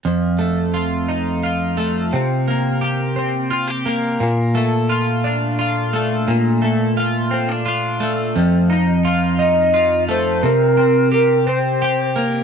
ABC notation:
X:1
M:6/8
L:1/16
Q:3/8=58
K:Fmix
V:1 name="Shakuhachi"
z12 | z12 | z12 | z12 |
z6 e4 c2 | B4 B2 c4 z2 |]
V:2 name="Clean electric guitar"
F,,2 A,2 F2 E2 F2 A,2 | C,2 B,2 G2 C2 F G B,2 | B,,2 A,2 F2 D2 F2 A,2 | B,,2 A,2 F2 C D F2 A,2 |
F,,2 E2 F2 E2 F2 A,2 | C,2 C2 G2 C2 G2 B,2 |]